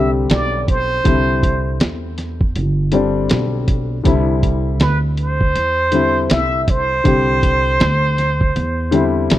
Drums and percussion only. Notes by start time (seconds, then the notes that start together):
0.30 snare, closed hi-hat
0.68 kick, closed hi-hat
1.05 kick, closed hi-hat
1.43 kick, closed hi-hat
1.80 snare, closed hi-hat
2.18 snare, closed hi-hat
2.41 kick
2.56 closed hi-hat
2.92 closed hi-hat
3.30 snare, closed hi-hat
3.68 kick, closed hi-hat
4.05 kick, closed hi-hat
4.43 kick, closed hi-hat
4.80 snare, closed hi-hat
5.17 closed hi-hat
5.41 kick
5.56 closed hi-hat
5.92 closed hi-hat
6.30 snare, closed hi-hat
6.68 kick, closed hi-hat
7.05 kick, closed hi-hat
7.43 kick, closed hi-hat
7.80 snare, closed hi-hat
8.18 snare, closed hi-hat
8.41 kick
8.56 closed hi-hat
8.92 closed hi-hat
9.30 snare, closed hi-hat